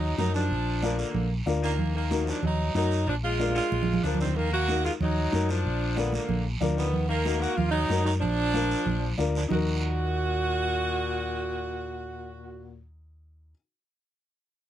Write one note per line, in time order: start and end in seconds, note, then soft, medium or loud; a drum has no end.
0.00 0.12 D#2 loud
0.00 0.18 F#3 medium
0.00 0.16 D#4 medium
0.17 0.52 F#2 medium
0.17 0.34 F#3 medium
0.17 0.33 D#4 medium
0.17 0.41 D#4 medium
0.17 0.41 F#4 medium
0.17 0.41 A#4 medium
0.17 high conga medium
0.17 low conga medium
0.17 short guiro medium
0.34 1.00 F3 medium
0.34 0.95 D4 medium
0.34 short guiro medium
0.50 1.02 A#1 medium
0.50 long guiro medium
0.82 1.05 D4 medium
0.82 1.06 F4 medium
0.82 1.06 A#4 medium
0.82 high conga medium
0.82 short guiro medium
0.99 1.31 D3 medium
0.99 1.31 A#3 medium
0.99 short guiro medium
1.14 1.40 A#1 medium
1.14 low conga medium
1.14 long guiro medium
1.46 1.79 D2 medium
1.46 1.69 D4 medium
1.46 1.69 F4 medium
1.46 1.70 A#4 medium
1.46 high conga medium
1.46 short guiro medium
1.62 1.93 D#3 medium
1.62 1.94 A#3 medium
1.62 short guiro medium
1.79 2.31 D#2 medium
1.79 low conga medium
1.79 long guiro medium
1.95 2.27 D#3 medium
1.95 2.26 A#3 medium
2.11 2.34 D#4 medium
2.11 2.34 F#4 medium
2.11 2.34 A#4 medium
2.11 high conga medium
2.11 short guiro medium
2.26 2.42 F3 medium
2.26 2.44 D4 medium
2.26 short guiro medium
2.42 2.69 D#2 loud
2.42 2.73 F#3 medium
2.42 2.74 D#4 medium
2.42 low conga medium
2.42 long guiro medium
2.74 3.08 F#2 medium
2.74 3.05 F#3 medium
2.74 2.97 D#4 medium
2.74 3.06 D#4 medium
2.74 2.98 F#4 medium
2.74 2.98 A#4 medium
2.74 high conga medium
2.74 short guiro medium
2.91 short guiro medium
3.07 3.59 A#1 medium
3.07 3.14 F3 medium
3.07 3.15 D4 loud
3.07 long guiro medium
3.24 3.54 G#3 medium
3.24 3.54 F4 loud
3.39 3.62 D4 medium
3.39 3.62 F4 medium
3.39 3.62 A#4 medium
3.39 high conga medium
3.39 short guiro medium
3.50 high conga medium
3.55 4.00 G#3 medium
3.55 4.01 F4 loud
3.55 short guiro medium
3.72 3.98 A#1 medium
3.72 low conga medium
3.72 long guiro medium
3.83 low conga medium
3.94 low conga medium
4.04 4.36 D2 medium
4.04 4.19 F3 medium
4.04 4.19 D4 medium
4.04 4.26 D4 medium
4.04 4.26 F4 medium
4.04 4.27 A#4 medium
4.04 low conga medium
4.04 short guiro medium
4.14 low conga medium
4.20 4.36 D#3 medium
4.20 4.35 C4 medium
4.20 short guiro medium
4.25 low conga loud
4.36 4.87 D#2 medium
4.36 4.51 D#3 medium
4.36 4.52 A#3 loud
4.36 low conga medium
4.36 long guiro medium
4.52 4.82 A#3 medium
4.52 4.83 F#4 loud
4.68 4.91 D#4 medium
4.68 4.91 F#4 medium
4.68 4.91 A#4 medium
4.68 high conga medium
4.68 short guiro medium
4.85 4.92 G#3 medium
4.85 4.92 F4 medium
4.85 short guiro medium
5.00 5.26 D#2 loud
5.00 5.51 F#3 medium
5.00 5.46 D#4 medium
5.00 low conga medium
5.00 long guiro medium
5.32 5.66 F#2 medium
5.32 5.55 D#4 medium
5.32 5.55 F#4 medium
5.32 5.55 A#4 medium
5.32 high conga medium
5.32 short guiro medium
5.49 6.00 F3 medium
5.49 5.97 D4 loud
5.49 short guiro medium
5.65 6.16 A#1 medium
5.65 long guiro medium
5.96 6.15 D3 medium
5.96 6.13 B3 medium
5.96 6.19 D4 medium
5.96 6.19 F4 medium
5.96 6.20 A#4 medium
5.96 high conga medium
5.96 short guiro medium
6.12 6.46 D3 medium
6.12 6.45 A#3 medium
6.12 high conga medium
6.12 short guiro medium
6.29 6.55 A#1 loud
6.29 low conga medium
6.29 long guiro medium
6.61 6.94 D2 medium
6.61 6.84 D4 medium
6.61 6.84 F4 medium
6.61 6.84 A#4 medium
6.61 high conga medium
6.61 low conga medium
6.61 short guiro medium
6.76 7.07 D#3 medium
6.76 7.07 B3 medium
6.76 short guiro medium
6.93 7.45 D#2 loud
6.93 low conga medium
6.93 long guiro medium
7.08 7.41 D#3 medium
7.08 7.39 A#3 medium
7.25 7.48 D#4 medium
7.25 7.48 F#4 medium
7.25 7.48 A#4 medium
7.25 high conga medium
7.25 short guiro medium
7.40 7.56 A#3 medium
7.40 7.57 F#4 medium
7.40 short guiro medium
7.56 7.84 D#2 loud
7.56 7.72 A#3 medium
7.56 7.73 F4 medium
7.56 low conga medium
7.56 long guiro medium
7.71 8.03 F#3 medium
7.71 8.02 D#4 loud
7.89 8.23 F#2 loud
7.89 8.12 D#4 medium
7.89 8.12 F#4 medium
7.89 8.13 A#4 medium
7.89 high conga medium
7.89 short guiro medium
8.04 8.12 F#3 medium
8.04 8.12 D#4 medium
8.04 short guiro medium
8.20 8.73 A#1 medium
8.20 9.14 F3 medium
8.20 9.14 D4 loud
8.20 low conga medium
8.20 long guiro medium
8.54 8.77 D4 medium
8.54 8.77 F4 medium
8.54 8.77 A#4 medium
8.54 high conga medium
8.54 short guiro medium
8.71 short guiro medium
8.86 9.12 A#1 loud
8.86 low conga medium
8.86 long guiro medium
9.18 9.44 D2 medium
9.18 9.41 D4 medium
9.18 9.41 F4 medium
9.18 9.41 A#4 medium
9.18 high conga medium
9.18 short guiro medium
9.35 9.43 F3 medium
9.35 9.42 D4 medium
9.35 short guiro medium
9.48 13.52 D#2 medium
9.48 12.85 A#2 medium
9.48 13.49 D#4 medium
9.48 13.51 F#4 medium
9.48 12.85 F#4 loud
9.48 low conga loud
9.48 long guiro loud
9.53 13.54 A#4 medium